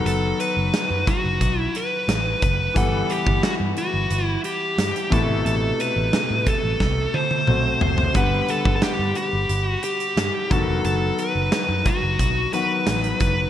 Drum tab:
HH |x-x-x-x-x-x-x-x-|x-x-x-x-x-x-xxx-|x-x-x-x---------|x-x-x-x-x-xxx-x-|
SD |----o-------o---|----o-------o---|----o---o-------|----o-------o---|
T1 |----------------|----------------|----------oo----|----------------|
T2 |----------------|----------------|------------o---|----------------|
FT |----------------|----------------|--------------oo|----------------|
BD |------o-o-----o-|o--o----------o-|------o-o-------|o--o----------o-|

HH |x-x-x-x-x-x-xxx-|
SD |----o-------o---|
T1 |----------------|
T2 |----------------|
FT |----------------|
BD |------o-o-----o-|